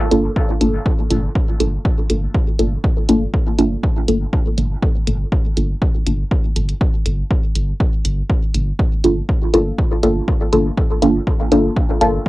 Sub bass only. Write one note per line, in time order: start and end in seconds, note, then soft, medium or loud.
0.11 0.29 G1 loud
0.61 0.78 G1 medium
1.11 1.28 G1 medium
1.60 1.77 G1 medium
2.10 2.27 G1 loud
2.59 2.76 G1 medium
3.09 3.26 G1 loud
3.58 3.76 G1 medium
4.08 4.25 G1 loud
4.58 4.75 G1 medium
5.07 5.24 G1 medium
5.57 5.74 G1 medium
6.06 6.24 G1 loud
6.56 6.73 G1 medium
7.06 7.23 G1 medium
7.55 7.72 G1 medium
8.05 8.22 G1 loud
8.54 8.72 G1 medium
9.04 9.21 G1 loud
9.54 9.71 G1 medium
10.03 10.20 G1 loud
10.53 10.70 G1 medium
11.02 11.19 G1 loud
11.52 11.69 G1 medium
12.01 12.19 G1 loud